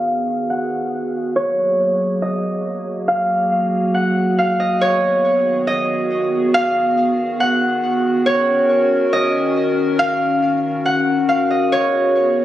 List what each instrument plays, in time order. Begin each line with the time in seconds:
Already playing: ambient pad D#3 B3 F#4 G#4, harp D#5 F5
0.50 harp F#5
1.36 ambient pad F#3 A#3 F#4, harp C#5
2.22 harp D#5
3.08 harp F5
3.94 harp F#5
4.39 harp F5
4.60 harp D#5
4.81 ambient pad D#3 B3 F#4 G#4, harp C#5
5.67 harp D#5
6.54 harp F5
7.40 harp F#5
8.26 ambient pad C#4 F#4 A#4, harp C#5
9.13 harp D#5
9.99 harp F5
10.86 harp F#5
11.29 harp F5
11.51 harp D#5
11.72 ambient pad B3 G#4, harp C#5